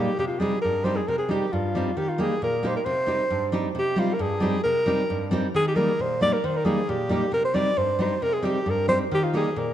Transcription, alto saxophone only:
Already playing: G4
0.19 G4
0.27 F4
0.39 G#4
0.62 A#4
0.84 C5
0.96 G#4
1.08 A#4
1.18 G#4
1.31 G4
1.52 F4
1.97 G4
2.09 F4
2.21 G#4
2.44 A#4
2.67 C5
2.77 A#4
2.85 C5
3.79 G4
4.00 F4
4.13 A#4
4.21 G#4
4.63 A#4
5.56 G#4
5.68 G4
5.76 A#4
6.01 C5
6.22 D5
6.33 A#4
6.45 C5
6.57 A#4
6.65 G#4
6.90 G4
7.33 A#4
7.44 C5
7.55 D5
7.78 C5
8.02 C5
8.23 A#4
8.33 G#4
8.45 G4
8.70 A#4
8.89 C5
9.14 G4
9.24 F4
9.37 G#4
9.58 A#4

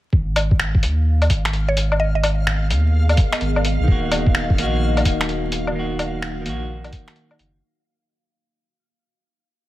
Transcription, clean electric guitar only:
3.84 D#3
3.88 A#3
3.92 F#4
4.55 D#3
4.59 A#3 F#4
5.71 D#3 A#3
5.79 F#4
6.41 D#3 A#3
6.49 F#4

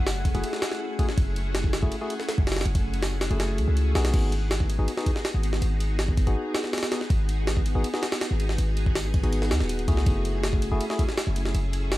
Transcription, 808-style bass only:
Already playing: F#1
0.35 F#1
1.18 F#1
1.83 F#1
2.38 F#1
2.66 F#1
3.31 F#1
3.58 C#2
3.68 C#2
3.95 B1
4.14 G#1
4.79 G#1
5.34 G#1
5.62 G#1
6.27 G#1
7.10 G#1
7.75 G#1
8.31 G#1
8.58 G#1
9.23 G#1
9.51 D#2
9.61 D#1
9.88 C#2
10.07 F#1
10.72 F#1
11.27 F#1
11.55 F#1

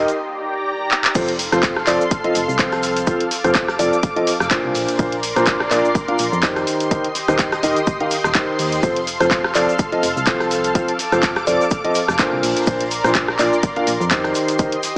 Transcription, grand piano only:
1.15 F3 C4 F4 A4 C5
1.52 F3 C4 F4 A4 C5
1.87 F3 C4 F4 A4 D5
2.24 F3 C4 F4 A4 D#5
2.59 F3 C4 F4 A4 C5
3.07 F3 C4 F4 A4 C5
3.44 F3 C4 F4 A4 C5
3.79 F3 C4 F4 A4 D5
4.16 F3 C4 F4 A4 D#5
4.51 A#2 D4 F4 A#4 C5
4.99 A#2 D4 F4 A#4 C5
5.36 A#2 D4 F4 A#4 C5
5.71 A#2 D4 F4 A#4 D5
6.08 A#2 D4 F4 A#4 F5
6.43 D#3 D#4 G4 A#4 C5
6.91 D#3 D#4 G4 A#4 C5
7.28 D#3 D#4 G4 A#4 C5
7.63 D#3 D#4 G4 A#4 D#5
8.00 D#3 D#4 G4 A#4 F5
8.35 D#3 D#4 G4 A#4 C5
8.83 F3 C4 F4 A4 C5
9.20 F3 C4 F4 A4 C5
9.55 F3 C4 F4 A4 D5
9.92 F3 C4 F4 A4 D#5
10.27 F3 C4 F4 A4 C5
10.75 F3 C4 F4 A4 C5
11.12 F3 C4 F4 A4 C5
11.47 F3 C4 F4 A4 D5
11.84 F3 C4 F4 A4 D#5
12.19 A#2 D4 F4 A#4 C5
12.67 A#2 D4 F4 A#4 C5
13.04 A#2 D4 F4 A#4 C5
13.39 A#2 D4 F4 A#4 D5
13.76 A#2 D4 F4 A#4 F5
14.11 D#3 D#4 G4 A#4 C5
14.59 D#3 D#4 G4 A#4 C5

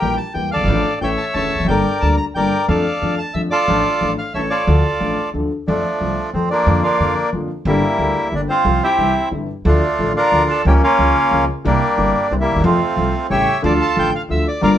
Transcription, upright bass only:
0.02 A#1
0.36 E2
0.56 F#1 G1
0.64 G#1
0.68 A1
1.01 A1
1.35 E1
1.56 E1
1.60 F1
1.65 F#1
1.69 G1
2.02 D2
2.36 G1
2.69 F2
3.02 F2
3.35 F2
3.68 A1
4.01 A1
4.34 A1
4.67 D2
5.01 A1
5.34 D2
5.68 F2
6.01 C2
6.34 F2
6.66 F2
7.00 F2
7.33 F2
7.65 G1
7.99 D2
8.32 G1
8.65 C2
8.98 C2
9.32 G1
9.65 D2
9.99 A1
10.32 D2
10.65 C#2
10.99 C#2
11.32 C#2
11.65 C2
11.98 G1
12.31 C2
12.52 D2 D#2
12.60 E2
12.64 F2
12.97 C2
13.30 A1
13.64 D2
13.97 A1
14.30 D2
14.63 G1

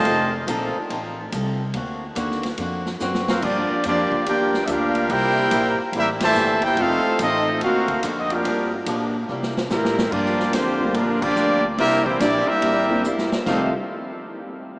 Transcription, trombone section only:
Already playing: C3 D#3 A3
3.28 A#3 C4 F4
3.42 F3 A#3 D4
3.86 F3 A#3 D4
4.27 A#3 D4 G4
4.68 A#3 D4 F4
5.12 A#3 E4 G4
5.94 G3 A#3 E4
6.23 A#2 E3 A3
6.64 A#3 E4 G4
6.79 A3 C4 F4
7.21 A3 C4 D#4
7.63 A#3 C4 F#4
8.32 A#3 D4 F4
9.70 E3 G3 A#4
10.12 F3 A#3 D4
10.53 D3 F3 C4
10.94 D3 F3 A#3
11.22 F3 A#3 D4
11.78 G3 A#3 E4
12.05 E3 G3 C4
12.19 D4
12.47 G3 A#3 E4
13.46 F2 C3 D#3 A3

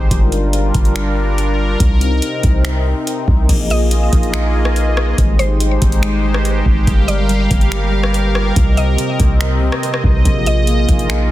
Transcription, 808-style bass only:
Already playing: G#1
0.11 G1
0.75 G1
1.80 C2
2.44 C2
3.28 C2
3.49 A#1
4.13 A#1
5.18 G#1
5.82 G#1
6.66 G#1
6.87 G1
7.51 G1
8.56 C2
9.20 C2
10.04 C2
10.25 A#1
10.89 A#1

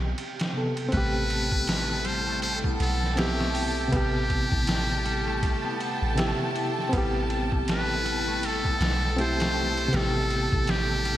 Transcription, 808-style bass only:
Already playing: B1
0.93 A1
2.80 B1
3.92 A1
4.52 A1
6.02 A1
6.93 A1
8.80 B1
9.94 A1
10.53 A1

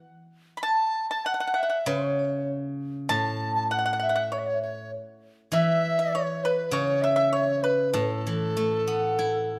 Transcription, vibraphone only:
0.68 A5
1.28 F#5
1.35 A5
1.41 F#5
1.58 E5
1.81 E5
1.88 C#5
2.19 C#5
3.12 A5
3.64 A5
3.74 F#5
3.97 F#5
4.03 E5
4.24 E5
4.32 C#5
4.53 E5
4.64 C#5
5.55 E5
6.07 E5
6.16 C#5
6.46 B4
6.76 C#5
7.05 E5
7.11 C#5
7.18 E5
7.37 C#5
7.66 B4
7.89 B4
7.98 A4

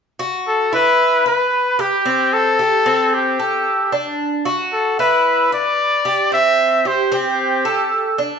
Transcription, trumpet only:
0.48 A4
0.74 B4
1.27 B4
1.81 G4
2.33 A4
3.14 G4
4.73 A4
5.00 B4
5.54 D5
6.34 E5
6.87 C5
7.14 G4

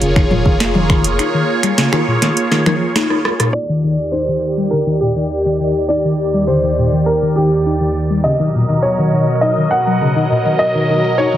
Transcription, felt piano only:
3.53 D5
4.12 C5
4.71 A#4
5.00 G4
5.89 D5
6.47 C5
7.06 A#4
7.35 G4
8.24 D#5
8.82 C#5
9.41 D#5
9.71 F#5
10.59 D#5
11.18 C#5

